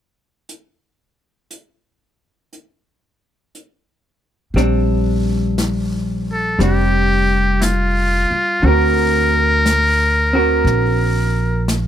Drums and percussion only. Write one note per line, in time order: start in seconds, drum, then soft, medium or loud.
0.49 closed hi-hat soft
1.51 closed hi-hat soft
2.53 closed hi-hat soft
3.55 closed hi-hat soft
4.57 brush sweep soft
4.57 snare soft
5.58 brush sweep soft
5.58 snare soft
5.58 hi-hat pedal soft
6.60 brush sweep soft
6.60 snare soft
7.62 brush sweep soft
7.62 snare soft
7.62 hi-hat pedal soft
8.62 brush sweep soft
9.66 brush sweep soft
9.66 snare soft
9.66 hi-hat pedal soft
10.67 brush sweep soft
10.67 snare soft
11.68 brush sweep soft
11.68 snare soft
11.68 hi-hat pedal soft